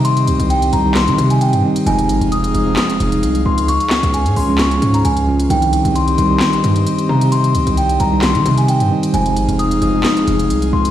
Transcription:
<<
  \new Staff \with { instrumentName = "Celesta" } { \time 4/4 \key c \phrygian \tempo 4 = 132 c'''4 g''8 bes''8 c'''8. aes''16 g''8 r8 | aes''4 ees'''8 ees'''8 ees'''4. c'''8 | des'''4 aes''8 c'''8 des'''8. bes''16 aes''8 r8 | g''4 c'''8 c'''8 c'''4. bes''8 |
c'''4 g''8 bes''8 c'''8. aes''16 g''8 r8 | aes''4 ees'''8 ees'''8 ees'''4. c'''8 | }
  \new Staff \with { instrumentName = "Analog synth pad" } { \time 4/4 \key c \phrygian << { ees''1 | f''1~ | f''1 | ees''1~ |
ees''1 | f''1 | } \\ { <c' g'>1 | <ees' aes'>1 | <des' aes'>1 | <c' g'>1~ |
<c' g'>1 | <ees' aes'>1 | } >> }
  \new Staff \with { instrumentName = "Tine electric piano" } { \time 4/4 \key c \phrygian r4. r16 <ees g c' ees'>4~ <ees g c' ees'>16 r8 <ees g c' ees'>8 | <f aes c' ees'>4~ <f aes c' ees'>16 r16 <f aes c' ees'>16 <f aes c' ees'>4. r8. | r4. r16 <f aes des' f'>4~ <f aes des' f'>16 r8 <f aes des' f'>8 | <ees g c' ees'>4~ <ees g c' ees'>16 r16 <ees g c' ees'>16 <ees g c' ees'>4. r8. |
r4. r16 <ees g c' ees'>4~ <ees g c' ees'>16 r8 <ees g c' ees'>8 | <f aes c' ees'>4~ <f aes c' ees'>16 r16 <f aes c' ees'>16 <f aes c' ees'>4. r8. | }
  \new Staff \with { instrumentName = "808-style bass" } { \clef bass \time 4/4 \key c \phrygian c8 des,16 c,8. c,8. ees16 c8. g,16 r8 | f,,8 aes,,16 f,,8. f,,8 r8 f,,8 c,8 des,8~ | des,16 r8 des,8 aes,16 des,4 aes,8 des,4 | c,8. c,8. c,8 r8 g,8 r8 c8~ |
c8 des,16 c,8. c,8. ees16 c8. g,16 r8 | f,,8 aes,,16 f,,8. f,,8 r8 f,,8 c,8 des,8 | }
  \new DrumStaff \with { instrumentName = "Drums" } \drummode { \time 4/4 hh16 hh16 hh16 hh16 hh16 hh16 hh8 <hc hh sn>16 hh16 hh16 hh16 hh16 hh8 hh16 | hh16 hh16 hh16 hh16 hh16 hh16 hh8 <hc hh sn>16 hh16 hh16 hh16 hh16 hh8 hh16 | hh16 hh16 <hc hh sn>16 hh16 hh16 hh16 hho8 <hc hh sn>16 hh16 hh16 hh16 hh16 hh8 hh16 | hh16 hh16 hh16 hh16 hh16 hh16 hh8 <hc hh sn>16 hh16 hh16 hh16 hh16 hh8 hh16 |
hh16 hh16 hh16 hh16 hh16 hh16 hh8 <hc hh sn>16 hh16 hh16 hh16 hh16 hh8 hh16 | hh16 hh16 hh16 hh16 hh16 hh16 hh8 <hc hh sn>16 hh16 hh16 hh16 hh16 hh8 hh16 | }
>>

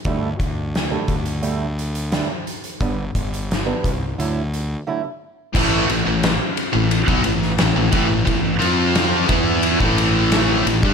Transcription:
<<
  \new Staff \with { instrumentName = "Steel-string acoustic guitar" } { \clef bass \time 4/4 \key a \minor \tempo 4 = 88 <d g a d'>16 r4 <d g a d'>16 r8 <d g a d'>16 r8. <d g a d'>16 r8. | <d g b d'>16 r4 <d g b d'>16 r8 <d fis a e'>16 r8. <d fis a e'>16 r8. | r1 | r1 | }
  \new Staff \with { instrumentName = "Distorted electric guitar" } { \clef bass \time 4/4 \key a \minor r1 | r1 | <a, e a>8 <a, e>16 <a, e>8 r8 <a, e>8 <b, fis>16 <a, e>8 <a, e>16 <a, e>16 <a, e>16 <a, e>16 | <a, e>8 <f c' f'>4 <e b e'>8. <a, e a>4~ <a, e a>16 <a, e>16 <g d'>16 | }
  \new Staff \with { instrumentName = "Overdriven electric guitar" } { \clef bass \time 4/4 \key a \minor r1 | r1 | <a, e a>8 <a, e>16 <a, e>8 r8 <a, e>8 <b, fis>16 <a, e>8 <a, e>16 <a, e>16 <a, e>16 <a, e>16 | <a, e>8 <f c' f'>4 <e b e'>8. <a, e a>4~ <a, e a>16 <a, e>16 <g d'>16 | }
  \new Staff \with { instrumentName = "Fingered electric bass" } { \clef bass \time 4/4 \key a \minor d,8 d,4 d,2 r8 | g,,8 g,,4 c,8 d,4 r4 | a,,8 a,,16 a,,8 r8 a,,8 b,,16 a,,8 a,,16 a,,16 a,,16 a,,16 | a,,8 f,4 e,8. a,,4~ a,,16 a,,16 g,16 | }
  \new DrumStaff \with { instrumentName = "Drums" } \drummode { \time 4/4 <hh bd>8 <hh bd>8 <hh sn>8 <hh bd>16 hh16 hh8 hh16 hh16 <hh sn>8 hh16 hh16 | <hh bd>8 <hh bd>16 hh16 <hh sn>8 <hh bd>8 hh8 hh8 r4 | <cymc bd>8 cymr8 <cymr sn>8 cymr8 cymr16 bd16 cymr16 sn16 <cymr sn>8 <bd cymr>8 | <bd cymr>8 cymr8 <cymr sn>8 <bd cymr>8 cymr16 bd16 cymr8 <cymr sn>8 cymr16 bd16 | }
>>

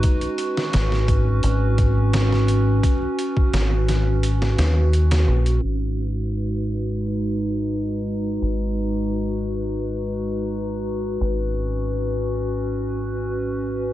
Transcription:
<<
  \new Staff \with { instrumentName = "Ambient pad" } { \time 4/4 \key gis \minor \tempo 4 = 86 << { <fis' b'>1~ | <fis' b'>1 | <fis' b'>1~ | <fis' b'>1~ |
<fis' b'>1 | } \\ { cis'1~ | cis'1 | <gis dis'>1~ | <gis dis'>1 |
cis'1 | } >> }
  \new Staff \with { instrumentName = "Fingered electric bass" } { \clef bass \time 4/4 \key gis \minor r4 gis,,4 gis,,2 | r4 gis,,4. dis,4 ais,,8 | gis,,1 | gis,,1 |
gis,,1 | }
  \new DrumStaff \with { instrumentName = "Drums" } \drummode { \time 4/4 <hh bd>16 hh16 hh16 sn16 <hh sn>16 sn16 <hh bd>8 hh8 <hh bd>8 <hh sn>16 sn16 hh8 | <hh bd>8 hh16 bd16 <hh sn>8 <hh sn>8 hh16 sn16 <hh sn>8 hh16 <hh sn>8 hh16 | r4 r4 r4 r4 | r4 r4 r4 r4 |
r4 r4 r4 r4 | }
>>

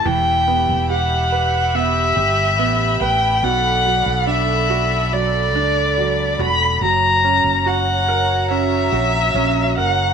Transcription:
<<
  \new Staff \with { instrumentName = "Violin" } { \time 4/4 \key e \dorian \tempo 4 = 71 g''4 fis''4 e''4. g''8 | fis''4 e''4 d''4. b''8 | ais''4 fis''4 e''4. fis''8 | }
  \new Staff \with { instrumentName = "String section" } { \time 4/4 \key e \dorian << { b''1~ | b''1 | ais''1 | } \\ { <g' e''>1 | <a' d''>1 | <fis' cis''>1 | } >> }
  \new Staff \with { instrumentName = "Grand piano" } { \time 4/4 \key e \dorian e8 b8 g'8 b'8 b8 g'8 b8 b'8 | b,8 fis8 d'8 fis'8 fis8 d'8 fis8 fis'8 | fis8 cis'8 fis'8 ais'8 cis'8 fis'8 cis'8 ais'8 | }
  \new Staff \with { instrumentName = "Fretless electric bass" } { \clef bass \time 4/4 \key e \dorian e,,8. e,,4.~ e,,16 g,,8 a,,8 a,,8 | b,,8. b,,4.~ b,,16 cis,4 e,,8 | fis,,8. fis,,4.~ fis,,16 ais,,8 ais,,8 fis,,8 | }
>>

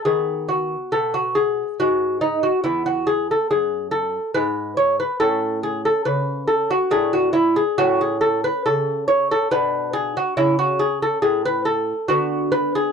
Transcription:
<<
  \new Staff \with { instrumentName = "Lute" } { \time 3/4 \key a \major \tempo 4 = 70 << { gis'8 fis'8 a'16 fis'16 gis'8 fis'8 dis'16 fis'16 | e'16 fis'16 gis'16 a'16 gis'8 a'8 b'8 cis''16 b'16 | a'8 gis'16 a'16 b'8 a'16 fis'16 gis'16 fis'16 e'16 gis'16 | fis'16 gis'16 a'16 b'16 a'8 cis''16 a'16 b'8 gis'16 fis'16 |
e'16 fis'16 gis'16 a'16 gis'16 b'16 a'8 fis'8 b'16 gis'16 | } \\ { b2. | b2. | cis'2 d'4 | cis'2 d'4 |
cis'2 b4 | } >> }
  \new Staff \with { instrumentName = "Lute" } { \clef bass \time 3/4 \key a \major dis4 b,4 gis,4 | e,4 fis,4 gis,4 | a,4 cis4 a,4 | a,4 cis4 b,4 |
cis4 a,4 d4 | }
>>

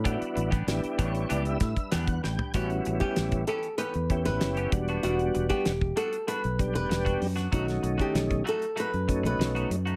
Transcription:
<<
  \new Staff \with { instrumentName = "Nylon-string guitar" } { \time 4/4 \key a \mixolydian \tempo 4 = 96 r1 | fis'8. g'8. a'8 b'8. b'8. r8 | fis'8. g'8. a'8 b'8. b'8. r8 | fis'8. g'8. a'8 b'8. b'8. r8 | }
  \new Staff \with { instrumentName = "Analog synth pad" } { \time 4/4 \key a \mixolydian <g d' b' b''>1 | r1 | r1 | r1 | }
  \new Staff \with { instrumentName = "Tonewheel organ" } { \time 4/4 \key a \mixolydian << { r4. cis''8 d''16 e''16 e''8 fis''8 g''8 | r1 | r1 | r1 | } \\ { <b d' e' fis'>8 r8 <b d' e' g'>4. r4. | <g b cis' e'>4. r4 <b cis' e' g'>4 <g b d' fis'>8~ | <g b d' fis'>4 r4. <g b d' g'>4 r8 | <dis a cis' dis'>4. r4 <fis a cis' dis'>4 r8 | } >> }
  \new Staff \with { instrumentName = "Clean electric guitar" } { \time 4/4 \key a \mixolydian <e b d' g'>16 r8 <b d' g'>16 r8 <e b d' g'>16 r16 <e b d' g'>16 r8. <e b d' g'>16 r8. | <e b cis' g'>16 r8 <b cis' g'>16 r8 <e b cis' g'>16 r16 <e b cis' g'>16 r4 <b cis' g'>16 r16 <b d' fis'>16 | <g b d' fis'>16 r8 <b d' fis'>16 r8 <g b d' fis'>16 r16 <g b d' fis'>16 r4 <b d' fis'>16 r16 <b d' fis'>16 | <fis a dis' fis'>16 r8 <a dis' fis'>16 r8 <fis a dis' fis'>16 r16 <fis a dis' fis'>16 r4 <a dis' fis'>16 r16 <a dis' fis'>16 | }
  \new Staff \with { instrumentName = "Fingered electric bass" } { \clef bass \time 4/4 \key a \mixolydian a,16 r16 a,,8 a,,16 r16 a,,8 cis,8 a,16 r16 e,8 a,,16 r16 | a,,8 a,,16 r16 a,,8 r8. e,8 a,,16 r8 e,,8 | e,,8 e,,16 r16 e,,8 r8. b,,8 e,,16 e,,8 fis,8 | b,,8 b,,16 r16 b,,8 r8. fis,8 b,,16 b,,8 fis,8 | }
  \new DrumStaff \with { instrumentName = "Drums" } \drummode { \time 4/4 <hh bd>16 hh16 hh16 <hh bd>16 <hh sn>16 hh16 <hh bd>16 hh16 hh16 hh16 <hh bd sn>16 <hh bd>16 <hh sn>16 <hh bd>16 sn16 tomfh16 | <hh bd>16 hh16 hh16 <hh bd>16 <hh sn>16 <hh bd>16 hh16 hh16 hh16 hh16 <hh bd>16 <hh sn>16 <hh sn>16 hh16 <hh bd>16 hh16 | hh16 hh16 hh16 <hh bd>16 <hh sn>16 bd16 hh16 hh16 hh16 hh16 <hh bd>16 hh16 <hh sn>16 <hh bd>16 hho16 <hh sn>16 | <hh bd>16 <hh sn>16 hh16 <hh bd>16 <hh sn>16 <hh bd>16 hh16 hh16 hh16 hh16 <hh bd>16 hh16 <hh sn>16 hh16 hh16 hh16 | }
>>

